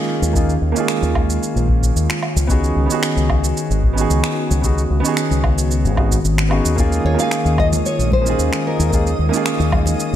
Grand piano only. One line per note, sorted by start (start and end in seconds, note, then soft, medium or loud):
0.00 0.30 A#3 medium
0.00 0.31 C#4 medium
0.00 0.32 D#4 medium
0.00 0.33 F4 medium
0.00 0.34 G#4 loud
0.33 0.50 A#3 medium
0.33 0.51 C#4 medium
0.33 0.51 D#4 medium
0.33 0.52 F4 medium
0.33 0.52 G#4 medium
0.72 2.44 A#3 medium
0.72 2.45 C#4 medium
0.72 2.46 D#4 medium
0.78 2.47 F4 medium
0.78 2.48 G#4 loud
2.47 2.85 B3 medium
2.47 2.86 C#4 medium
2.47 2.87 D#4 medium
2.47 2.87 F#4 medium
2.47 2.88 G#4 medium
2.86 3.92 B3 medium
2.86 3.93 C#4 medium
2.86 3.94 D#4 medium
2.92 3.95 F#4 medium
2.92 3.96 G#4 loud
3.93 4.59 B3 medium
3.93 4.60 C#4 medium
3.97 4.61 D#4 medium
3.97 4.62 F#4 medium
3.97 4.63 G#4 loud
4.61 4.79 B3 medium
4.61 4.79 C#4 medium
4.61 4.80 D#4 medium
4.61 4.80 F#4 medium
4.61 4.81 G#4 medium
5.00 5.93 B3 loud
5.00 5.94 C#4 medium
5.00 5.95 D#4 medium
5.06 5.96 F#4 medium
5.06 5.97 G#4 loud
5.95 6.13 B3 medium
5.95 6.13 C#4 medium
5.95 6.14 D#4 medium
5.95 6.14 F#4 medium
5.95 6.15 G#4 medium
6.49 6.74 B3 medium
6.49 6.74 C#4 medium
6.49 6.75 D#4 medium
6.49 6.75 F#4 medium
6.49 6.76 G#4 medium
6.76 7.13 A#3 medium
6.76 7.15 C#4 medium
6.76 7.15 D#4 medium
6.76 7.16 F4 medium
6.76 7.16 G#4 medium
7.15 8.20 A#3 medium
7.15 8.21 C#4 medium
7.15 8.22 D#4 medium
7.21 8.23 F4 medium
7.21 8.24 G#4 medium
8.22 8.87 A#3 medium
8.22 8.88 C#4 medium
8.22 8.89 D#4 medium
8.28 8.90 F4 medium
8.28 8.91 G#4 loud
8.90 9.07 A#3 medium
8.90 9.08 C#4 medium
8.90 9.08 D#4 medium
8.90 9.09 F4 medium
8.90 9.09 G#4 loud
9.29 10.16 A#3 medium
9.29 10.16 C#4 medium
9.29 10.16 D#4 medium
9.35 10.16 F4 medium
9.35 10.16 G#4 loud